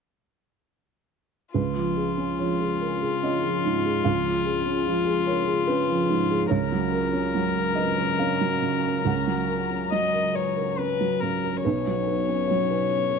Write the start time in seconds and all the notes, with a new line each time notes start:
1.54 C#2 F3 C#4 F4 G#4 B4
1.76 F3
1.97 G#4
2.17 C#4
2.39 F3 C#5
2.60 G#4
2.81 A#4
3.02 G#4
3.23 C#4 D#5
3.44 F3
3.65 G#2
3.85 G#4
4.04 C#2 F5
4.26 F3
4.46 G#4
4.66 C#4
4.87 F3
5.06 G#4
5.27 A#4 C#5
5.48 G#4
5.67 C#4 B4
5.90 F3
6.10 G#2
6.31 G#4
6.47 C#2 F#3 C#4 A#4 C#5 A#5
6.72 F#3
6.93 A#4
7.13 C#4
7.35 F#3
7.56 A#4
7.75 B4 D#5
7.98 A#4
8.19 C#4 F5
8.41 F#3
8.62 C#3
8.84 A#4
9.05 C#2 F#5
9.27 F#3
9.49 A#4
9.70 C#4
9.92 F#3 D#5
10.13 A#4
10.34 B4 C#5
10.56 A#4
10.78 C#4 B4
11.00 F#3
11.20 C#3 A#4
11.44 A#4
11.64 B1 F#3 C#4 B4 C#5
11.87 F#3
12.08 B4
12.29 C#4
12.47 F#3 C#5
12.71 B4
12.91 C#5
13.11 B4